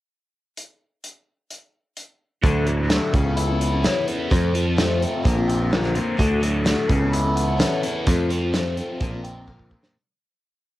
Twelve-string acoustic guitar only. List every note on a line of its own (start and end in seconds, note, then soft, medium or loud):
2.43 2.67 D3 medium
2.43 2.67 F#3 medium
2.43 2.64 A3 medium
2.43 2.65 D4 medium
2.43 2.66 E4 medium
2.43 2.68 A4 medium
2.65 2.78 A3 medium
2.65 2.78 D4 medium
2.65 2.78 E4 medium
2.65 2.76 A4 medium
2.78 2.89 A3 soft
2.78 2.89 D4 soft
2.78 2.89 E4 medium
2.78 2.90 A4 medium
2.89 3.13 D3 medium
2.89 3.13 F#3 medium
2.89 3.12 A3 medium
2.89 3.13 D4 medium
2.89 3.13 E4 medium
2.89 3.14 A4 medium
3.12 3.25 B3 medium
3.12 3.24 C#4 medium
3.12 3.23 E4 medium
3.12 3.22 A4 medium
3.23 3.49 B3 soft
3.23 3.48 C#4 soft
3.23 3.47 E4 soft
3.23 3.46 A4 medium
3.47 3.73 B3 soft
3.47 3.72 C#4 soft
3.47 3.71 E4 medium
3.47 3.70 A4 medium
3.72 3.83 B3 soft
3.72 3.83 C#4 soft
3.72 3.83 E4 medium
3.72 3.84 A4 medium
3.83 4.07 C#3 medium
3.83 4.07 E3 medium
3.83 4.04 B3 medium
3.83 4.06 C#4 medium
3.83 4.07 E4 medium
3.83 4.08 A4 medium
4.06 4.18 B3 medium
4.06 4.18 C#4 medium
4.06 4.17 E4 medium
4.06 4.16 A4 medium
4.17 4.30 B3 soft
4.17 4.31 C#4 soft
4.17 4.30 E4 soft
4.17 4.30 A4 soft
4.30 4.54 F3 medium
4.30 4.51 A3 medium
4.30 4.52 C4 medium
4.30 4.54 F4 medium
4.30 4.54 A4 medium
4.52 4.65 A3 medium
4.52 4.66 C4 medium
4.52 4.65 F4 medium
4.52 4.63 A4 medium
4.65 4.77 C4 soft
4.65 4.77 F4 medium
4.65 4.77 A4 medium
4.76 5.01 F3 medium
4.76 4.98 A3 medium
4.76 4.99 C4 medium
4.76 5.01 F4 medium
4.76 5.02 A4 medium
5.00 5.12 A3 medium
5.00 5.13 C4 medium
5.00 5.13 F4 medium
5.00 5.10 A4 medium
5.12 5.23 C4 soft
5.12 5.24 F4 medium
5.12 5.24 A4 medium
5.23 5.36 A#2 medium
5.23 5.36 D3 medium
5.23 5.36 A#3 medium
5.23 5.36 C4 medium
5.23 5.35 F4 medium
5.23 5.34 A#4 medium
5.35 5.61 A#3 soft
5.35 5.60 C4 soft
5.35 5.59 F4 soft
5.35 5.58 A#4 medium
5.59 5.70 A#3 soft
5.59 5.71 C4 medium
5.59 5.72 F4 medium
5.59 5.71 A#4 medium
5.71 5.95 A#2 medium
5.71 5.95 D3 medium
5.71 5.93 A#3 medium
5.71 5.94 C4 medium
5.71 5.95 F4 medium
5.71 5.96 A#4 medium
5.95 6.18 A#3 medium
5.95 6.18 C4 medium
5.95 6.18 F4 medium
5.95 6.19 A#4 medium
6.17 6.41 D3 medium
6.17 6.39 A3 medium
6.17 6.40 E4 medium
6.17 6.42 F#4 medium
6.17 6.43 A4 medium
6.40 6.53 A3 medium
6.40 6.54 E4 medium
6.40 6.53 F#4 medium
6.40 6.52 A4 medium
6.53 6.64 E4 soft
6.53 6.65 F#4 soft
6.53 6.65 A4 medium
6.64 6.88 D3 medium
6.64 6.87 A3 medium
6.64 6.88 E4 medium
6.64 6.89 F#4 medium
6.64 6.89 A4 medium
6.88 7.00 B3 medium
6.88 7.01 C#4 medium
6.88 7.00 E4 medium
6.88 6.98 A4 medium
7.00 7.25 B3 soft
7.00 7.25 C#4 soft
7.00 7.24 E4 soft
7.00 7.23 A4 medium
7.24 7.49 B3 soft
7.24 7.48 C#4 soft
7.24 7.47 E4 soft
7.24 7.46 A4 medium
7.47 7.58 B3 soft
7.47 7.58 C#4 medium
7.47 7.58 E4 soft
7.47 7.59 A4 medium
7.58 7.82 C#3 medium
7.58 7.83 E3 medium
7.58 7.81 B3 medium
7.58 7.82 C#4 medium
7.58 7.83 E4 medium
7.58 7.83 A4 medium
7.83 8.06 B3 medium
7.83 8.07 C#4 medium
7.83 8.07 E4 medium
7.83 8.07 A4 medium
8.06 8.30 F3 medium
8.06 8.28 A3 medium
8.06 8.30 C4 medium
8.06 8.31 F4 medium
8.06 8.31 A4 medium
8.29 8.42 A3 medium
8.29 8.42 C4 medium
8.29 8.42 F4 medium
8.29 8.40 A4 medium
8.41 8.52 C4 soft
8.41 8.53 F4 soft
8.41 8.53 A4 medium
8.52 8.76 F3 medium
8.52 8.75 A3 medium
8.52 8.76 C4 medium
8.52 8.77 F4 medium
8.52 8.78 A4 medium
8.76 8.88 A3 medium
8.76 8.89 C4 medium
8.76 8.88 F4 medium
8.76 8.86 A4 medium
8.88 9.00 C4 soft
8.88 9.00 F4 medium
8.88 9.00 A4 soft
9.00 9.12 A#2 medium
9.00 9.12 D3 medium
9.00 9.13 A#3 medium
9.00 9.12 C4 medium
9.00 9.11 F4 medium
9.00 9.10 A#4 medium
9.11 9.36 A#3 soft
9.11 9.35 C4 soft
9.11 9.34 F4 soft
9.11 9.33 A#4 medium
9.34 9.46 A#3 soft
9.34 9.47 C4 soft
9.34 9.47 F4 medium
9.34 9.47 A#4 medium
9.47 9.70 A#2 medium
9.47 9.71 D3 medium
9.47 9.69 A#3 medium
9.47 9.70 C4 medium
9.47 9.71 F4 medium
9.47 9.71 A#4 medium
9.70 9.94 A#3 medium
9.70 9.94 C4 medium
9.70 9.95 F4 medium
9.70 9.95 A#4 medium